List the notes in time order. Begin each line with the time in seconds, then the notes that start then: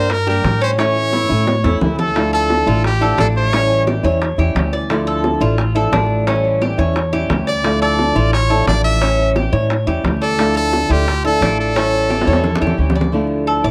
Already playing: G2 A#4 C5
0.10 A#4, muted nylon-string guitar stroke, high bongo
0.27 G3 A#3 D4 G4 A#4
0.44 A2 G3 D4 G4, high bongo, low bongo
0.61 C#4 C5
0.77 E3 A3 C#4 E4 C#5, high bongo
0.96 high bongo
1.13 E4, high bongo
1.29 A2 A3 C#4 E4, high bongo
1.47 C#5, muted nylon-string guitar stroke, high bongo
1.64 E2 A3 C#4 E4, high bongo
1.81 D2 E3 A3 C#4 E4, low bongo
1.99 A4, low bongo
2.15 D3 F3 A3 D4 E4, high bongo
2.33 A4
2.50 high bongo
2.66 A1 F3 A3 D4 E4 F4
2.84 G4, muted nylon-string guitar stroke, high bongo
3.01 F3 A3 D4 E4 A4
3.18 A1 F3 A3 D4 E4 A4, high bongo, low bongo
3.37 C#5
3.52 E3 G3 C#4 E4, high bongo
3.71 high bongo
3.87 G4, high bongo
4.03 E2 G3 C#4 E4 C#5, high bongo
4.21 muted nylon-string guitar stroke, high bongo
4.38 E2 G3 C#4 E4 G4
4.55 D2 E3 G3 C#4 E4, high bongo, low bongo
4.73 D5, high bongo
4.89 D3 F3 A3 D4 E4, high bongo
5.07 A4
5.24 high bongo
5.41 A1 F3 A3 D4 E4 F4
5.58 muted nylon-string guitar stroke, high bongo
5.75 F3 A3 D4 E4 A4
5.92 A1 F3 A3 D4 E4, high bongo, low bongo
6.27 E3 G3 C#4 E4, high bongo
6.45 high bongo
6.61 G4, high bongo
6.78 E2 G3 C#4 E4 C#5, high bongo
6.96 muted nylon-string guitar stroke, high bongo
7.13 G3 C#4 E4 G4
7.30 D2 E3 G3 C#4 E4, high bongo, low bongo
7.47 D5, high bongo
7.64 D3 F3 A3 D4 E4, high bongo
7.82 A4 D5
7.99 high bongo
8.15 A1 F3 A3 D4 E4 F4
8.33 C#5, muted nylon-string guitar stroke, high bongo
8.50 F3 A3 D4 E4 A4
8.67 A1 F3 A3 D4 E4 D5, high bongo, low bongo
8.84 E5
9.01 E3 G3 C#4 E4, high bongo
9.19 high bongo
9.36 G4, high bongo
9.52 A2 G3 C#4 E4 C#5, high bongo
9.70 muted nylon-string guitar stroke, high bongo
9.87 E2 G3 C#4 E4 G4
10.04 D2 E3 G3 C#4 E4, high bongo, low bongo
10.22 A4 D5, high bongo
10.38 D3 F3 A3 D4 E4, high bongo
10.56 A4
10.73 high bongo
10.89 D2 F3 A3 D4 E4 F4 G4
11.07 muted nylon-string guitar stroke, high bongo
11.25 F3 A3 D4 E4 A4
11.41 A1 F3 A3 D4 E4, high bongo, low bongo
11.60 A4
11.75 E3 G3 C#4 E4, high bongo
11.93 high bongo
12.10 G4, high bongo
12.21 high bongo
12.27 E2 G3 C#4 E4 C#5
12.33 high bongo
12.44 muted nylon-string guitar stroke, low bongo
12.56 low bongo
12.61 E2 G3 C#4 E4 G4
12.67 low bongo
12.77 D2 E3 G3 C#4 E4
12.90 low bongo
12.96 D5
13.01 low bongo
13.12 D3 F3 A3 D4 E4
13.47 A4
13.64 A1 F3 A3 D4 E4 D5